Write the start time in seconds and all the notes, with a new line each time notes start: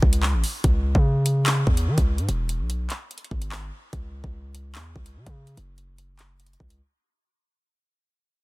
0.02 C#2, kick
0.13 closed hi-hat
0.23 clap
0.33 A1
0.44 open hi-hat
0.64 C#2, kick, closed hi-hat
0.95 C#3, kick
1.26 closed hi-hat
1.46 clap, closed hi-hat
1.67 E2, kick
1.77 closed hi-hat
1.87 E3
1.98 C#2, kick, closed hi-hat
2.18 G#2, closed hi-hat
2.28 E1, closed hi-hat
2.49 closed hi-hat
2.59 B1
2.70 closed hi-hat
2.90 clap, closed hi-hat
3.11 closed hi-hat
3.18 closed hi-hat
3.24 closed hi-hat
3.31 G#1, kick
3.42 closed hi-hat
3.52 clap
3.93 C#2, kick, closed hi-hat
4.24 C#2, kick
4.55 closed hi-hat
4.75 E2, clap, closed hi-hat
4.96 C#2, kick
5.06 closed hi-hat
5.16 C#3
5.26 C#3, kick, closed hi-hat
5.47 closed hi-hat
5.57 F#1, closed hi-hat
5.78 closed hi-hat
5.98 closed hi-hat
6.19 clap, closed hi-hat
6.40 closed hi-hat
6.46 closed hi-hat
6.53 closed hi-hat
6.60 C#2, kick
6.70 closed hi-hat